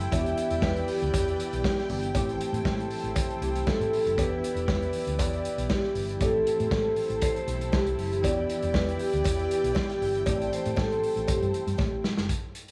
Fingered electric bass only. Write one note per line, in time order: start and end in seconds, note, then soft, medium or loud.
0.12 0.32 E1 loud
0.51 0.60 E1 medium
0.62 0.83 E2 loud
1.02 1.11 D2 medium
1.14 1.34 E2 medium
1.53 1.62 B1 medium
1.89 2.10 G1 medium
2.15 2.35 A1 medium
2.53 2.63 A2 medium
2.65 2.86 A2 loud
3.03 3.13 A1 medium
3.41 3.62 C2 medium
3.80 3.90 A2 medium
4.06 4.18 F#1 loud
4.18 4.38 E1 medium
4.55 4.65 E1 medium
4.68 4.89 E2 loud
5.07 5.20 D2 medium
5.20 5.40 E2 loud
5.58 5.67 B1 medium
5.95 6.16 G1 medium
6.21 6.41 A1 loud
6.60 6.69 A2 medium
6.72 6.92 A2 medium
7.10 7.19 A1 medium
7.48 7.73 B1 medium
7.73 7.93 C2 medium
7.98 8.24 F#1 medium
8.24 8.44 E1 medium
8.63 8.72 E1 medium
8.75 8.95 E2 loud
9.13 9.23 D2 medium
9.25 9.46 E2 loud
9.64 9.73 B1 medium
10.01 10.22 G1 medium
10.27 10.47 A1 loud
10.66 10.75 A2 medium
10.78 10.98 A2 medium
11.16 11.25 A1 medium
11.29 11.39 A2 medium
11.41 11.51 G2 medium
11.67 11.76 G2 medium
11.79 11.90 A2 loud
11.92 12.02 A1 medium
12.18 12.27 F#1 loud